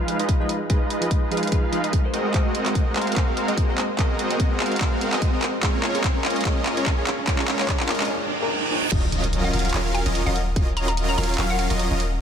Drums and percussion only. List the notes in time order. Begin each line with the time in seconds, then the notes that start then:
0.08 closed hi-hat
0.20 closed hi-hat
0.29 kick, closed hi-hat
0.49 closed hi-hat
0.70 kick, closed hi-hat
0.90 closed hi-hat
1.02 closed hi-hat
1.11 kick, closed hi-hat
1.31 closed hi-hat
1.37 closed hi-hat
1.43 closed hi-hat
1.47 closed hi-hat
1.52 kick, closed hi-hat
1.73 closed hi-hat
1.84 closed hi-hat
1.93 kick, closed hi-hat
2.14 closed hi-hat
2.34 kick, clap, closed hi-hat
2.55 closed hi-hat
2.66 clap, closed hi-hat
2.75 kick, closed hi-hat
2.96 clap, closed hi-hat
3.02 closed hi-hat
3.07 closed hi-hat
3.12 closed hi-hat
3.16 kick, clap, closed hi-hat
3.37 closed hi-hat
3.48 closed hi-hat
3.58 kick, closed hi-hat
3.78 clap, closed hi-hat
3.99 kick, clap, closed hi-hat
4.19 closed hi-hat
4.31 closed hi-hat
4.40 kick, closed hi-hat
4.60 clap, closed hi-hat
4.66 closed hi-hat
4.72 closed hi-hat
4.76 closed hi-hat
4.81 kick, clap, closed hi-hat
5.01 closed hi-hat
5.13 clap, closed hi-hat
5.22 kick, closed hi-hat
5.42 clap, closed hi-hat
5.63 kick, clap, closed hi-hat
5.83 clap, closed hi-hat
5.95 closed hi-hat
6.04 kick, clap, closed hi-hat
6.25 clap, closed hi-hat
6.30 closed hi-hat
6.36 closed hi-hat
6.41 closed hi-hat
6.45 kick, clap, closed hi-hat
6.66 clap, closed hi-hat
6.77 closed hi-hat
6.86 kick, clap, closed hi-hat
7.07 clap, closed hi-hat
7.27 kick, clap, closed hi-hat
7.39 clap
7.48 clap, closed hi-hat
7.59 clap, closed hi-hat
7.68 kick, clap, closed hi-hat
7.80 clap
7.89 clap, closed hi-hat
7.95 closed hi-hat
8.00 clap, closed hi-hat
8.05 closed hi-hat
8.92 kick, closed hi-hat, crash
9.12 closed hi-hat
9.24 closed hi-hat
9.33 closed hi-hat
9.53 closed hi-hat
9.59 closed hi-hat
9.65 closed hi-hat
9.69 closed hi-hat
9.74 clap, closed hi-hat
9.95 closed hi-hat
10.06 closed hi-hat
10.15 closed hi-hat
10.36 closed hi-hat
10.56 kick, closed hi-hat
10.77 closed hi-hat
10.88 closed hi-hat
10.97 closed hi-hat
11.18 closed hi-hat
11.23 closed hi-hat
11.29 closed hi-hat
11.34 closed hi-hat
11.38 clap, closed hi-hat
11.59 closed hi-hat
11.70 closed hi-hat
11.79 closed hi-hat
12.00 closed hi-hat